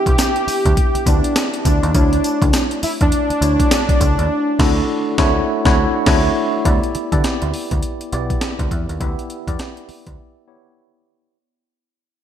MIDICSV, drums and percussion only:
0, 0, Header, 1, 2, 480
1, 0, Start_track
1, 0, Tempo, 588235
1, 1585, Time_signature, 4, 2, 24, 8
1, 9985, End_track
2, 0, Start_track
2, 0, Title_t, "Drums"
2, 51, Note_on_c, 9, 36, 105
2, 54, Note_on_c, 9, 42, 62
2, 133, Note_off_c, 9, 36, 0
2, 136, Note_off_c, 9, 42, 0
2, 149, Note_on_c, 9, 42, 71
2, 153, Note_on_c, 9, 38, 127
2, 153, Note_on_c, 9, 54, 107
2, 231, Note_off_c, 9, 42, 0
2, 234, Note_off_c, 9, 38, 0
2, 235, Note_off_c, 9, 54, 0
2, 293, Note_on_c, 9, 42, 48
2, 374, Note_off_c, 9, 42, 0
2, 391, Note_on_c, 9, 46, 85
2, 391, Note_on_c, 9, 54, 74
2, 473, Note_off_c, 9, 46, 0
2, 473, Note_off_c, 9, 54, 0
2, 534, Note_on_c, 9, 42, 61
2, 535, Note_on_c, 9, 36, 94
2, 616, Note_off_c, 9, 42, 0
2, 617, Note_off_c, 9, 36, 0
2, 629, Note_on_c, 9, 36, 93
2, 629, Note_on_c, 9, 42, 77
2, 711, Note_off_c, 9, 36, 0
2, 711, Note_off_c, 9, 42, 0
2, 776, Note_on_c, 9, 42, 60
2, 857, Note_off_c, 9, 42, 0
2, 868, Note_on_c, 9, 36, 98
2, 870, Note_on_c, 9, 42, 80
2, 870, Note_on_c, 9, 54, 66
2, 949, Note_off_c, 9, 36, 0
2, 951, Note_off_c, 9, 54, 0
2, 952, Note_off_c, 9, 42, 0
2, 1014, Note_on_c, 9, 42, 61
2, 1095, Note_off_c, 9, 42, 0
2, 1108, Note_on_c, 9, 38, 127
2, 1109, Note_on_c, 9, 54, 89
2, 1110, Note_on_c, 9, 42, 72
2, 1190, Note_off_c, 9, 38, 0
2, 1191, Note_off_c, 9, 54, 0
2, 1192, Note_off_c, 9, 42, 0
2, 1253, Note_on_c, 9, 42, 52
2, 1335, Note_off_c, 9, 42, 0
2, 1348, Note_on_c, 9, 36, 95
2, 1349, Note_on_c, 9, 42, 70
2, 1349, Note_on_c, 9, 54, 71
2, 1430, Note_off_c, 9, 36, 0
2, 1430, Note_off_c, 9, 54, 0
2, 1431, Note_off_c, 9, 42, 0
2, 1496, Note_on_c, 9, 42, 49
2, 1578, Note_off_c, 9, 42, 0
2, 1587, Note_on_c, 9, 42, 77
2, 1587, Note_on_c, 9, 54, 73
2, 1588, Note_on_c, 9, 36, 115
2, 1669, Note_off_c, 9, 36, 0
2, 1669, Note_off_c, 9, 42, 0
2, 1669, Note_off_c, 9, 54, 0
2, 1736, Note_on_c, 9, 42, 49
2, 1817, Note_off_c, 9, 42, 0
2, 1830, Note_on_c, 9, 42, 68
2, 1830, Note_on_c, 9, 54, 67
2, 1911, Note_off_c, 9, 42, 0
2, 1912, Note_off_c, 9, 54, 0
2, 1972, Note_on_c, 9, 36, 96
2, 1976, Note_on_c, 9, 42, 63
2, 2053, Note_off_c, 9, 36, 0
2, 2057, Note_off_c, 9, 42, 0
2, 2066, Note_on_c, 9, 42, 74
2, 2069, Note_on_c, 9, 38, 121
2, 2070, Note_on_c, 9, 54, 98
2, 2147, Note_off_c, 9, 42, 0
2, 2151, Note_off_c, 9, 38, 0
2, 2152, Note_off_c, 9, 54, 0
2, 2213, Note_on_c, 9, 42, 49
2, 2294, Note_off_c, 9, 42, 0
2, 2309, Note_on_c, 9, 46, 87
2, 2309, Note_on_c, 9, 54, 77
2, 2390, Note_off_c, 9, 46, 0
2, 2390, Note_off_c, 9, 54, 0
2, 2454, Note_on_c, 9, 42, 61
2, 2455, Note_on_c, 9, 36, 95
2, 2535, Note_off_c, 9, 42, 0
2, 2537, Note_off_c, 9, 36, 0
2, 2546, Note_on_c, 9, 42, 84
2, 2627, Note_off_c, 9, 42, 0
2, 2696, Note_on_c, 9, 42, 62
2, 2777, Note_off_c, 9, 42, 0
2, 2791, Note_on_c, 9, 42, 81
2, 2791, Note_on_c, 9, 54, 70
2, 2872, Note_off_c, 9, 54, 0
2, 2873, Note_off_c, 9, 42, 0
2, 2934, Note_on_c, 9, 36, 89
2, 2936, Note_on_c, 9, 42, 63
2, 3016, Note_off_c, 9, 36, 0
2, 3018, Note_off_c, 9, 42, 0
2, 3030, Note_on_c, 9, 38, 124
2, 3031, Note_on_c, 9, 42, 73
2, 3031, Note_on_c, 9, 54, 93
2, 3111, Note_off_c, 9, 38, 0
2, 3112, Note_off_c, 9, 54, 0
2, 3113, Note_off_c, 9, 42, 0
2, 3174, Note_on_c, 9, 36, 111
2, 3176, Note_on_c, 9, 42, 52
2, 3255, Note_off_c, 9, 36, 0
2, 3257, Note_off_c, 9, 42, 0
2, 3269, Note_on_c, 9, 36, 92
2, 3271, Note_on_c, 9, 42, 73
2, 3271, Note_on_c, 9, 54, 67
2, 3351, Note_off_c, 9, 36, 0
2, 3352, Note_off_c, 9, 54, 0
2, 3353, Note_off_c, 9, 42, 0
2, 3418, Note_on_c, 9, 42, 50
2, 3500, Note_off_c, 9, 42, 0
2, 3748, Note_on_c, 9, 36, 105
2, 3750, Note_on_c, 9, 38, 109
2, 3750, Note_on_c, 9, 49, 88
2, 3830, Note_off_c, 9, 36, 0
2, 3832, Note_off_c, 9, 38, 0
2, 3832, Note_off_c, 9, 49, 0
2, 4229, Note_on_c, 9, 36, 119
2, 4229, Note_on_c, 9, 38, 115
2, 4310, Note_off_c, 9, 36, 0
2, 4310, Note_off_c, 9, 38, 0
2, 4614, Note_on_c, 9, 36, 122
2, 4614, Note_on_c, 9, 38, 116
2, 4695, Note_off_c, 9, 36, 0
2, 4696, Note_off_c, 9, 38, 0
2, 4948, Note_on_c, 9, 36, 120
2, 4949, Note_on_c, 9, 38, 115
2, 4949, Note_on_c, 9, 49, 85
2, 5030, Note_off_c, 9, 36, 0
2, 5030, Note_off_c, 9, 38, 0
2, 5030, Note_off_c, 9, 49, 0
2, 5429, Note_on_c, 9, 36, 110
2, 5429, Note_on_c, 9, 42, 78
2, 5510, Note_off_c, 9, 36, 0
2, 5511, Note_off_c, 9, 42, 0
2, 5577, Note_on_c, 9, 42, 44
2, 5659, Note_off_c, 9, 42, 0
2, 5669, Note_on_c, 9, 42, 63
2, 5751, Note_off_c, 9, 42, 0
2, 5812, Note_on_c, 9, 36, 98
2, 5812, Note_on_c, 9, 42, 59
2, 5893, Note_off_c, 9, 36, 0
2, 5894, Note_off_c, 9, 42, 0
2, 5908, Note_on_c, 9, 42, 77
2, 5911, Note_on_c, 9, 38, 118
2, 5989, Note_off_c, 9, 42, 0
2, 5992, Note_off_c, 9, 38, 0
2, 6052, Note_on_c, 9, 42, 50
2, 6134, Note_off_c, 9, 42, 0
2, 6149, Note_on_c, 9, 46, 88
2, 6231, Note_off_c, 9, 46, 0
2, 6293, Note_on_c, 9, 42, 57
2, 6295, Note_on_c, 9, 36, 89
2, 6375, Note_off_c, 9, 42, 0
2, 6377, Note_off_c, 9, 36, 0
2, 6386, Note_on_c, 9, 42, 79
2, 6467, Note_off_c, 9, 42, 0
2, 6535, Note_on_c, 9, 42, 61
2, 6616, Note_off_c, 9, 42, 0
2, 6630, Note_on_c, 9, 42, 77
2, 6712, Note_off_c, 9, 42, 0
2, 6774, Note_on_c, 9, 36, 89
2, 6775, Note_on_c, 9, 42, 54
2, 6855, Note_off_c, 9, 36, 0
2, 6856, Note_off_c, 9, 42, 0
2, 6865, Note_on_c, 9, 38, 118
2, 6867, Note_on_c, 9, 42, 69
2, 6947, Note_off_c, 9, 38, 0
2, 6948, Note_off_c, 9, 42, 0
2, 7012, Note_on_c, 9, 36, 109
2, 7012, Note_on_c, 9, 42, 53
2, 7093, Note_off_c, 9, 36, 0
2, 7094, Note_off_c, 9, 42, 0
2, 7109, Note_on_c, 9, 36, 89
2, 7111, Note_on_c, 9, 42, 63
2, 7191, Note_off_c, 9, 36, 0
2, 7193, Note_off_c, 9, 42, 0
2, 7257, Note_on_c, 9, 42, 51
2, 7338, Note_off_c, 9, 42, 0
2, 7349, Note_on_c, 9, 36, 114
2, 7349, Note_on_c, 9, 42, 75
2, 7430, Note_off_c, 9, 36, 0
2, 7430, Note_off_c, 9, 42, 0
2, 7499, Note_on_c, 9, 42, 46
2, 7580, Note_off_c, 9, 42, 0
2, 7588, Note_on_c, 9, 42, 69
2, 7670, Note_off_c, 9, 42, 0
2, 7732, Note_on_c, 9, 36, 98
2, 7734, Note_on_c, 9, 42, 63
2, 7813, Note_off_c, 9, 36, 0
2, 7816, Note_off_c, 9, 42, 0
2, 7827, Note_on_c, 9, 42, 78
2, 7830, Note_on_c, 9, 38, 127
2, 7908, Note_off_c, 9, 42, 0
2, 7912, Note_off_c, 9, 38, 0
2, 7973, Note_on_c, 9, 42, 49
2, 8054, Note_off_c, 9, 42, 0
2, 8068, Note_on_c, 9, 46, 86
2, 8150, Note_off_c, 9, 46, 0
2, 8213, Note_on_c, 9, 42, 59
2, 8214, Note_on_c, 9, 36, 95
2, 8294, Note_off_c, 9, 42, 0
2, 8296, Note_off_c, 9, 36, 0
2, 9985, End_track
0, 0, End_of_file